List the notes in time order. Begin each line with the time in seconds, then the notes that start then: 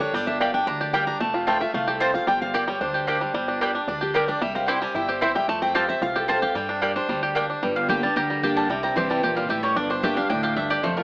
Already playing: G3 G4
0.00 D4 C#5
0.13 G1 G3 D5
0.27 D4 E5
0.40 G3 A#3 G4 D5 F5 G5
0.54 D4 G5
0.67 D2 D4 A#5
0.81 G4 D5
0.93 G3 A#3 G4 D5 G5
1.07 D4 A#5
1.20 F1 A3 A5
1.34 F4
1.47 A3 C4 F4 C5 G5 A5
1.61 F4 E5
1.74 C2 A3 F5
1.87 G4 A4
2.00 C4 F4 C5 A5
2.14 F4 F5
2.27 G1 G3 G5
2.42 F5
2.54 A#3 G4 D5 G5
2.68 G3 C#5
2.81 D2 D4 C5
2.94 G4
3.07 A#3 D4 G4 D5 G5
3.21 G3
3.34 G1 G3
3.48 D4
3.61 G3 A#3 G4 D5 G5
3.75 D4
3.87 D2 D4 D5
4.01 G4
4.14 G3 A#3 G4 A#4 D5 G5
4.28 D4 D5
4.41 C2 G3 E5
4.55 C4 F5
4.68 C4 E4 G4 C5 G5
4.82 G3 G#5
4.94 G1 E4 G5
5.09 G4 C5
5.21 C4 E4 C5 E5 G5
5.35 G3 G5
5.48 F2 A3 A5
5.62 C4 G5
5.75 C4 F4 G4 C5 F5 A5
5.88 C4 E5
6.01 C2 F4 F5
6.16 G4 A4
6.28 C4 F4 C5 A5
6.42 G4 F5
6.55 G2 G3 G5
6.69 D4
6.82 G3 A#3 G4 D5 G5
6.96 D4 C5
7.08 D2 G3
7.23 G4
7.35 A#3 D4 G4 D5 G5
7.50 D4
7.62 G1 G2 G3
7.76 F5
7.88 G3 A#3 D4 G4 G5
8.03 G3 D4 G4 A5
8.16 D2 D3 G4 A#5
8.30 G3
8.43 G3 A#3 D4 G4
8.57 G3 A5
8.69 C2 C3 G3 G5
8.83 C4 A#5
8.96 C2 E3 G3 C4 E4 G4 C6
9.10 G3 A5
9.23 A#1 A#2 G4 G5
9.36 G3 F5
9.49 A1 A2 G4 E5
9.63 G3 C#5
9.76 G1 G2 D4 D5
9.90 D4 C5
10.03 G3 A#3 D4 G4 E5
10.16 D4 G4 F5
10.30 D2 A2 D4 G5
10.43 G4 F5
10.56 G2 D4 E5
10.70 G4 D5
10.83 F1 F2 A3 C5
10.97 F4 A#4